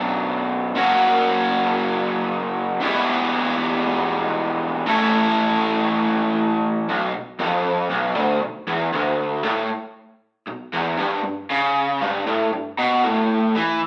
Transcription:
overdriven electric guitar
Already playing: B1 F#2 B2 F#3 D4
0.75 F#2 C#3 F#3 A#3 C#4 F#4
2.80 E2 B2 E3 G3 B3 E4
4.86 A2 E3 A3 C#4 E4 A4
6.89 B1
7.14 B1
7.39 F2
7.90 B1
8.16 D2
8.43 B1
8.67 E2
8.93 D2
9.45 A2
10.47 B1
10.73 E2
10.98 G2
11.23 G2
11.50 C#3
12.01 G2
12.27 A2
12.53 G2
12.78 B2
13.04 A2
13.56 E3

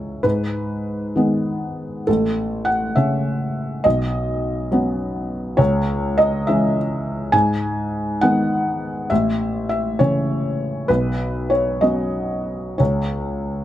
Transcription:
felt piano
Already playing: C#2 E3 G#3 C#4 C#5 E5
0.23 G#2 B4
1.16 D#3 G#3 B3
2.07 A1 A4
2.65 F#5
2.96 C#3 C#4 E5
3.84 B1 D#5
4.72 F#3 B3 C#4
5.57 C#2 C#5
6.18 D#5
6.47 E3 G#3 C#4 E5
7.32 G#2 G#5
8.21 D#3 G#3 B3 F#5
9.10 A1 E5
9.69 E5
9.99 C#3 E3 C#4 C#5
10.88 B1 B4
11.50 C#5
11.81 F#3 B3 C#4 D#5
12.78 C#2 C#5

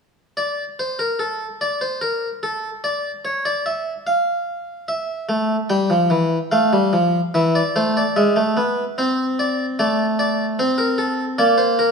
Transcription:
harpsichord
0.37 D5
0.79 C5
0.99 A#4
1.19 A4
1.61 D5
1.81 C5
2.01 A#4
2.43 A4
2.84 D5
3.25 C#5
3.45 D5
3.66 E5
4.07 F5
4.88 E5
5.29 A3
5.70 G3 G5
5.90 F3
6.10 E3
6.51 A3 F5
6.73 G3
6.93 F3
7.34 E3 E5
7.55 D5
7.76 A3 C5
7.97 D5
8.16 G#3 E5
8.36 A3
8.57 B3
8.98 C4 C5
9.39 D5
9.79 A3 D5
10.19 D5
10.59 C4 C5
10.78 A#4
10.98 A4
11.38 A#3 D5
11.58 C5
11.79 A#4

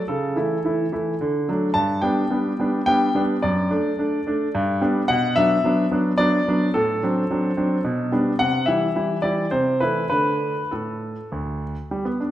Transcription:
grand piano
0.08 C#3 A4
0.36 E3 A3 E4
0.65 E3 A3 E4
0.92 E3 A3 E4
1.21 D3
1.48 F#3 A3 D4
1.74 G2 A5
2.02 G3 B3 D4 G5
2.31 G3 B3 D4
2.59 G3 B3 D4
2.86 G3 B3 D4 G5
3.15 G3 B3 D4
3.42 F#2 D5
3.71 A3 D4
3.99 A3 D4
4.27 A3 D4
4.55 G2
4.82 G3 B3 D4
5.08 B2 F#5
5.36 F#3 B3 D4 E5
5.64 F#3 B3 D4
5.91 F#3 B3 D4
6.18 F#3 B3 D4 D5
6.48 F#3 B3 D4
6.74 A2 A4
7.03 F#3 C4 D4
7.31 F#3 C4 D4
7.57 F#3 C4 D4
7.84 B2
8.12 G3 B3 D4
8.39 C3 F#5
8.66 E3 G3 E4 E5
8.95 E3 G3 E4
9.22 E3 G3 E4 D5
9.51 C3 C5
9.80 E3 A3 E4 B4
10.10 D3 A3 D4 B4
10.71 A2 A4
11.32 D2
11.91 G3
12.05 B3
12.20 D4

